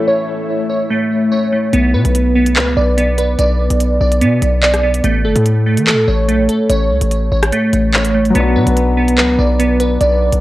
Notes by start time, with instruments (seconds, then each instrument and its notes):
Already playing: grand piano E3 A3 C#4 E4, synth keys A3 A4, ambient pad A3 E4 C#5 E5
0.08 synth keys C#5
0.70 synth keys C#5
0.90 synth keys A3
1.32 synth keys C#5
1.53 synth keys A3
1.73 808-style bass B1, synth keys B3, closed hi-hat
1.94 808-style bass B2, synth keys B4
2.05 808-style bass B1, closed hi-hat
2.15 closed hi-hat
2.35 synth keys B3
2.46 closed hi-hat
2.56 808-style bass C#2, synth keys B4, clap
2.77 808-style bass B1, synth keys D5
2.97 synth keys B3, closed hi-hat
3.18 synth keys B4, closed hi-hat
3.39 808-style bass B1, synth keys D5, closed hi-hat
3.70 808-style bass B1, closed hi-hat
3.80 closed hi-hat
4.01 808-style bass B1, synth keys D5
4.12 closed hi-hat
4.21 808-style bass B2, synth keys B3, closed hi-hat
4.42 808-style bass B1, closed hi-hat
4.63 synth keys D5, clap
4.74 cross-stick, closed hi-hat
4.83 synth keys B3
4.94 closed hi-hat
5.04 808-style bass A1, synth keys A3, closed hi-hat
5.25 808-style bass G1, synth keys A4
5.36 808-style bass A2, closed hi-hat
5.46 closed hi-hat
5.66 synth keys A3
5.77 808-style bass E3, closed hi-hat
5.87 synth keys A4, clap
5.92 808-style bass A2
6.08 808-style bass A1, synth keys C#5
6.28 808-style bass B1, synth keys A3, closed hi-hat
6.39 808-style bass A1
6.49 synth keys A4, closed hi-hat
6.70 808-style bass A1, synth keys C#5, closed hi-hat
6.90 808-style bass C#2
7.01 808-style bass A1, closed hi-hat
7.11 closed hi-hat
7.32 808-style bass A1, synth keys C#5
7.43 cross-stick, closed hi-hat
7.52 synth keys A3, closed hi-hat
7.73 808-style bass A1, closed hi-hat
7.94 synth keys C#5, clap
8.05 closed hi-hat
8.15 synth keys A3
8.25 closed hi-hat
8.30 grand piano F#3 B3
8.35 808-style bass B1, synth keys B3, grand piano D4, closed hi-hat
8.40 grand piano F#4
8.56 808-style bass B2, synth keys B4
8.67 808-style bass B1, closed hi-hat
8.77 closed hi-hat
8.97 synth keys B3
9.08 closed hi-hat
9.18 808-style bass C#2, synth keys B4, clap
9.39 808-style bass B1, synth keys D5
9.59 synth keys B3, closed hi-hat
9.80 synth keys B4, closed hi-hat
10.01 808-style bass B1, synth keys D5, closed hi-hat
10.32 808-style bass B1, closed hi-hat